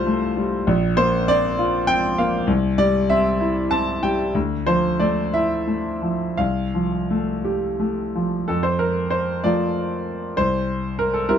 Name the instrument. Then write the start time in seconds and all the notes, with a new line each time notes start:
grand piano
Already playing: C2 G3 A3 F4 C5 F5
0.06 A3
0.37 G3
0.67 A#1
0.97 A#3 C5
1.28 C4 D5
1.59 F4
1.87 C4 G5
2.18 A#3 F5
2.47 C2
2.78 G3 D5
3.10 C4 E5
3.40 E4
3.71 C4 A5
4.03 G3 G5
4.35 D2
4.67 F3 C5
5.00 A3 D5
5.34 E4 E5
5.67 A3
6.02 F3
6.37 C2 F5
6.74 F3
7.11 A3
7.44 G4
7.80 A3
8.15 F3
8.48 F2 A4
8.63 C5
8.79 A#4
9.10 C5
9.44 F3 A3 F4 D5
10.37 C2 C5
10.99 A#4
11.14 A4
11.29 G3 C4 E4 A#4